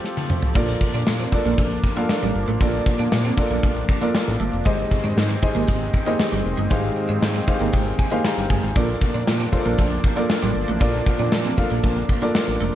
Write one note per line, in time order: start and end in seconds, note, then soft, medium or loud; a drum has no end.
0.00 0.52 F3 medium
0.00 0.52 C4 medium
0.00 0.55 F4 loud
0.00 0.52 G4 medium
0.00 0.58 G4 loud
0.00 0.52 A4 medium
0.00 0.56 A4 loud
0.00 0.57 C5 loud
0.04 snare medium
0.17 high tom medium
0.30 mid tom medium
0.42 floor tom medium
0.55 0.75 A#1 loud
0.55 1.28 A#2 medium
0.55 4.62 F3 medium
0.55 0.65 A#3 medium
0.55 4.62 A#3 medium
0.55 1.25 D4 medium
0.55 4.62 D4 medium
0.55 1.25 F4 medium
0.55 1.25 A4 medium
0.55 1.25 A#4 medium
0.55 1.25 D5 loud
0.55 kick loud
0.55 crash loud
0.55 tambourine soft
0.68 closed hi-hat medium
0.81 muted clean electric guitar stroke soft
0.81 kick medium
0.81 closed hi-hat medium
0.81 tambourine soft
0.94 1.04 A#2 loud
0.94 1.04 D4 medium
0.94 closed hi-hat soft
1.07 1.26 A#2 loud
1.07 snare loud
1.07 tambourine medium
1.19 1.30 C4 medium
1.19 closed hi-hat medium
1.32 1.90 D4 medium
1.32 1.90 F4 medium
1.32 1.90 A4 medium
1.32 1.90 A#4 medium
1.32 1.91 D5 medium
1.32 muted clean electric guitar stroke soft
1.32 kick medium
1.32 closed hi-hat medium
1.32 tambourine medium
1.45 1.55 A#1 medium
1.45 1.55 A#3 medium
1.45 closed hi-hat medium
1.58 1.77 A#1 loud
1.58 1.68 A3 medium
1.58 kick medium
1.58 closed hi-hat medium
1.58 tambourine medium
1.71 closed hi-hat medium
1.84 muted clean electric guitar stroke soft
1.84 kick loud
1.84 closed hi-hat medium
1.84 tambourine soft
1.96 2.07 A#3 medium
1.96 2.54 D4 medium
1.96 2.54 F4 medium
1.96 2.54 A4 medium
1.96 2.55 A#4 medium
1.96 2.55 F5 medium
1.96 closed hi-hat medium
2.09 snare loud
2.09 tambourine medium
2.22 2.32 A1 medium
2.22 2.32 G3 medium
2.22 closed hi-hat medium
2.35 2.45 G1 medium
2.35 muted clean electric guitar stroke soft
2.35 open hi-hat medium
2.35 tambourine soft
2.48 2.58 A1 medium
2.48 2.58 A3 medium
2.48 closed hi-hat medium
2.60 2.80 A#1 loud
2.60 3.34 A#2 medium
2.60 2.71 A#3 medium
2.60 3.30 D4 medium
2.60 3.30 F4 medium
2.60 3.30 A4 medium
2.60 3.30 A#4 medium
2.60 3.31 D5 medium
2.60 kick loud
2.60 closed hi-hat loud
2.60 tambourine soft
2.74 closed hi-hat medium
2.86 muted clean electric guitar stroke soft
2.86 kick medium
2.86 closed hi-hat medium
2.86 tambourine medium
2.99 3.09 A#2 loud
2.99 3.09 D4 medium
2.99 closed hi-hat soft
3.12 3.31 A#2 loud
3.12 snare loud
3.12 tambourine medium
3.25 3.35 C4 medium
3.25 closed hi-hat medium
3.37 3.95 D4 medium
3.37 3.95 F4 medium
3.37 3.96 A4 medium
3.37 3.96 A#4 medium
3.37 3.96 D5 medium
3.37 muted clean electric guitar stroke soft
3.37 kick medium
3.37 closed hi-hat medium
3.37 tambourine medium
3.51 3.60 A#1 medium
3.51 3.61 A#3 medium
3.51 closed hi-hat soft
3.63 3.83 A#1 loud
3.63 3.73 A3 medium
3.63 kick medium
3.63 closed hi-hat medium
3.63 tambourine medium
3.76 muted clean electric guitar stroke soft
3.76 closed hi-hat medium
3.89 kick loud
3.89 closed hi-hat medium
3.89 tambourine soft
4.01 4.12 A#3 medium
4.01 4.59 D4 medium
4.01 4.60 F4 medium
4.01 4.60 A4 medium
4.01 4.60 A#4 medium
4.01 4.60 D5 medium
4.01 closed hi-hat medium
4.14 snare loud
4.14 tambourine medium
4.28 4.37 A1 medium
4.28 closed hi-hat medium
4.40 4.50 G1 medium
4.40 4.50 A3 medium
4.40 open hi-hat medium
4.53 4.63 F1 medium
4.53 closed hi-hat medium
4.65 4.85 G#1 loud
4.65 5.39 G#2 medium
4.65 8.72 D#3 medium
4.65 4.75 G#3 medium
4.65 8.72 G#3 medium
4.65 8.72 C4 medium
4.65 5.35 D#4 medium
4.65 5.35 G4 medium
4.65 5.35 G#4 medium
4.65 5.36 C5 medium
4.65 5.36 D#5 medium
4.65 kick loud
4.65 closed hi-hat loud
4.79 closed hi-hat medium
4.91 muted clean electric guitar stroke soft
4.91 kick medium
4.91 closed hi-hat medium
4.91 tambourine medium
5.04 5.14 G#2 loud
5.04 5.14 D4 medium
5.04 closed hi-hat soft
5.17 5.36 G#2 loud
5.17 snare loud
5.17 tambourine medium
5.29 5.39 C4 medium
5.29 closed hi-hat medium
5.42 6.00 D#4 medium
5.42 6.01 G4 medium
5.42 6.01 G#4 medium
5.42 6.01 C5 medium
5.42 6.01 D#5 loud
5.42 muted clean electric guitar stroke soft
5.42 kick medium
5.42 closed hi-hat medium
5.42 tambourine medium
5.55 5.65 G#1 loud
5.55 5.65 A#3 medium
5.55 closed hi-hat medium
5.68 5.88 G#1 loud
5.68 5.78 G#3 medium
5.68 kick medium
5.68 closed hi-hat medium
5.68 tambourine medium
5.82 closed hi-hat medium
5.93 muted clean electric guitar stroke soft
5.93 kick loud
5.93 closed hi-hat medium
5.93 tambourine medium
6.06 6.17 A#3 medium
6.06 6.64 D#4 medium
6.06 6.65 G4 medium
6.06 6.65 G#4 medium
6.06 6.65 C5 medium
6.06 6.65 D#5 loud
6.06 closed hi-hat medium
6.20 snare loud
6.20 tambourine medium
6.32 6.42 G1 medium
6.32 6.42 G3 medium
6.32 closed hi-hat medium
6.45 6.55 F1 medium
6.45 muted clean electric guitar stroke soft
6.45 open hi-hat medium
6.45 tambourine soft
6.57 6.68 G1 medium
6.57 6.68 G#3 medium
6.57 closed hi-hat medium
6.70 6.90 G#1 loud
6.70 7.44 G#2 medium
6.70 6.81 G#3 loud
6.70 7.40 D#4 medium
6.70 7.40 G4 medium
6.70 7.40 G#4 medium
6.70 7.41 C5 medium
6.70 7.41 F5 medium
6.70 kick loud
6.70 closed hi-hat loud
6.70 tambourine soft
6.84 closed hi-hat medium
6.96 muted clean electric guitar stroke soft
6.96 closed hi-hat medium
6.96 tambourine medium
7.09 7.19 G#2 loud
7.09 7.19 D4 medium
7.09 closed hi-hat soft
7.22 7.41 G#2 loud
7.22 snare loud
7.22 tambourine medium
7.35 7.45 C4 medium
7.35 closed hi-hat medium
7.47 8.06 D#4 medium
7.47 8.06 G4 medium
7.47 8.06 G#4 medium
7.47 8.06 C5 medium
7.47 8.06 F5 loud
7.47 muted clean electric guitar stroke soft
7.47 kick medium
7.47 closed hi-hat medium
7.47 tambourine medium
7.60 7.70 G#1 medium
7.60 7.70 A#3 medium
7.60 closed hi-hat soft
7.73 7.93 G#1 loud
7.73 7.83 G#3 medium
7.73 7.97 G5 medium
7.73 kick medium
7.73 closed hi-hat medium
7.73 tambourine medium
7.86 muted clean electric guitar stroke soft
7.86 closed hi-hat medium
7.99 8.23 G#5 medium
7.99 kick loud
7.99 closed hi-hat medium
7.99 tambourine soft
8.11 8.22 A#3 medium
8.11 8.69 D#4 medium
8.11 8.69 G4 medium
8.11 8.70 G#4 medium
8.11 8.70 C5 medium
8.11 8.70 F5 medium
8.11 closed hi-hat medium
8.25 8.49 A#5 medium
8.25 snare loud
8.25 tambourine medium
8.37 8.47 G1 medium
8.37 closed hi-hat medium
8.50 8.60 G1 loud
8.50 8.60 G#3 medium
8.50 8.74 G#5 medium
8.50 kick medium
8.50 open hi-hat medium
8.63 8.73 G#1 loud
8.63 closed hi-hat medium
8.76 8.95 A#1 loud
8.76 9.49 A#2 medium
8.76 12.75 F3 medium
8.76 8.86 A#3 medium
8.76 12.75 A#3 medium
8.76 9.45 D4 medium
8.76 12.75 D4 medium
8.76 9.46 F4 medium
8.76 9.46 A4 medium
8.76 9.46 A#4 medium
8.76 9.46 D5 medium
8.76 kick loud
8.76 closed hi-hat loud
8.76 tambourine soft
8.89 closed hi-hat medium
9.01 muted clean electric guitar stroke soft
9.01 kick medium
9.01 closed hi-hat medium
9.01 tambourine medium
9.14 9.24 A#2 loud
9.14 9.24 D4 medium
9.14 closed hi-hat soft
9.27 9.47 A#2 loud
9.27 snare loud
9.27 tambourine medium
9.40 9.50 C4 medium
9.40 closed hi-hat medium
9.52 10.10 D4 medium
9.52 10.11 F4 medium
9.52 10.11 A4 medium
9.52 10.11 A#4 medium
9.52 9.59 C5 medium
9.52 muted clean electric guitar stroke soft
9.52 kick medium
9.52 closed hi-hat medium
9.52 tambourine medium
9.59 10.14 D5 medium
9.66 9.76 A#1 loud
9.66 9.76 A#3 medium
9.66 closed hi-hat medium
9.78 9.98 A#1 loud
9.78 9.88 A3 medium
9.78 kick medium
9.78 closed hi-hat medium
9.78 tambourine medium
9.92 closed hi-hat medium
10.04 muted clean electric guitar stroke soft
10.04 kick loud
10.04 closed hi-hat medium
10.04 tambourine soft
10.16 10.27 A#3 medium
10.16 10.74 D4 medium
10.16 10.74 F4 medium
10.16 10.75 A4 medium
10.16 10.75 A#4 medium
10.16 10.75 D5 medium
10.16 closed hi-hat medium
10.30 snare loud
10.30 tambourine medium
10.42 10.52 A1 medium
10.42 10.52 G3 medium
10.42 closed hi-hat medium
10.55 10.65 G1 medium
10.55 muted clean electric guitar stroke soft
10.55 open hi-hat medium
10.55 tambourine soft
10.68 10.78 A1 medium
10.68 10.78 A3 medium
10.68 closed hi-hat medium
10.80 11.00 A#1 loud
10.80 11.54 A#2 medium
10.80 10.91 A#3 medium
10.80 11.50 D4 medium
10.80 11.50 F4 medium
10.80 11.50 A4 medium
10.80 11.51 A#4 medium
10.80 11.51 D5 loud
10.80 kick loud
10.80 closed hi-hat medium
10.94 closed hi-hat medium
11.06 muted clean electric guitar stroke soft
11.06 kick medium
11.06 closed hi-hat medium
11.06 tambourine medium
11.19 11.29 A#2 loud
11.19 11.29 D4 medium
11.19 closed hi-hat medium
11.32 11.52 A#2 loud
11.32 snare loud
11.32 tambourine medium
11.45 11.55 C4 medium
11.45 closed hi-hat medium
11.57 12.16 D4 medium
11.57 12.16 F4 medium
11.57 12.16 A4 medium
11.57 12.16 A#4 medium
11.57 12.16 F5 medium
11.57 muted clean electric guitar stroke soft
11.57 kick medium
11.57 closed hi-hat medium
11.57 tambourine medium
11.70 11.81 A#1 medium
11.70 11.80 A#3 medium
11.70 closed hi-hat medium
11.83 12.03 A#1 loud
11.83 11.93 A3 medium
11.83 kick loud
11.83 closed hi-hat medium
11.83 tambourine medium
11.97 muted clean electric guitar stroke soft
11.97 closed hi-hat medium
12.09 kick loud
12.09 closed hi-hat medium
12.09 tambourine soft
12.22 12.32 A#3 medium
12.22 12.75 D4 medium
12.22 12.75 F4 medium
12.22 12.75 A4 medium
12.22 12.75 A#4 medium
12.22 12.75 D5 loud
12.22 closed hi-hat medium
12.35 snare loud
12.35 tambourine medium
12.48 12.58 A1 medium
12.48 closed hi-hat medium
12.61 12.70 F1 loud
12.61 12.71 A3 medium
12.61 open hi-hat medium
12.61 tambourine soft